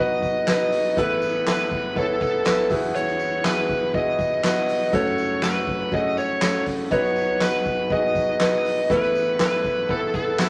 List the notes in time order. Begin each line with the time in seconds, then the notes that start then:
Already playing: B1 B2 B3 D#4
0.00 F#4 B4 D#5
0.22 kick, ride, tambourine
0.47 B3 D#4 F#4 B4 D#5, snare, clap, ride, tambourine
0.72 open hi-hat, ride, tambourine
0.97 A1 A2 B3 E4 A4 B4, kick, hi-hat pedal, ride, tambourine
1.22 ride, tambourine
1.46 B3 E4 A4 B4, snare, clap, ride, tambourine
1.71 kick, ride
1.96 B3 E4 A4 C#5, kick, ride, tambourine
2.21 A4, kick, ride, tambourine
2.45 B3 E4 A4 B4, snare, clap, ride, tambourine
2.70 E2 E3 B3 E4 F#4 G#4, kick, open hi-hat, ride, tambourine
2.95 C#5, hi-hat pedal, ride, tambourine
3.08 snare
3.20 ride, tambourine
3.44 B3 E4 F#4 G#4 B4, snare, clap, ride, tambourine
3.69 kick, ride, tambourine
3.94 B3 E4 F#4 G#4 D#5, kick, ride
4.18 kick, ride, tambourine
4.43 B3 E4 F#4 B4 D#5, snare, clap, ride, tambourine
4.68 open hi-hat, ride, tambourine
4.92 F#1 F#2 A3 C#4 F#4 A4 C#5, kick, hi-hat pedal, ride, tambourine
5.06 snare
5.18 ride, tambourine
5.42 A3 C#4 F#4 A4 B4, snare, clap, ride, tambourine
5.67 kick, ride
5.92 A3 C#4 F#4 G#4 D#5, kick, ride, tambourine
6.16 C#5, ride, tambourine
6.41 A3 C#4 F#4 A4, snare, clap, ride, tambourine
6.66 kick, open hi-hat, ride, tambourine
6.91 B1 B2 B3 D#4 F#4 B4 C#5, kick, hi-hat pedal, ride, tambourine
7.03 snare
7.16 ride, tambourine
7.40 B3 D#4 F#4 B4, snare, clap, ride, tambourine
7.65 kick, ride, tambourine
7.90 B3 D#4 F#4 G#4 D#5, kick, ride
8.15 kick, ride, tambourine
8.40 B3 D#4 F#4 B4 D#5, snare, clap, ride, tambourine
8.65 open hi-hat, ride, tambourine
8.90 A1 A2 B3 E4 A4 B4, kick, hi-hat pedal, ride, tambourine
9.02 snare
9.15 ride, tambourine
9.39 B3 E4 A4 B4, snare, clap, ride, tambourine
9.64 kick, ride, tambourine
9.88 B3 E4 A4 B4, kick, ride, tambourine
10.13 A4, kick, ride, tambourine
10.38 B3 E4 A4 B4, snare, clap, ride, tambourine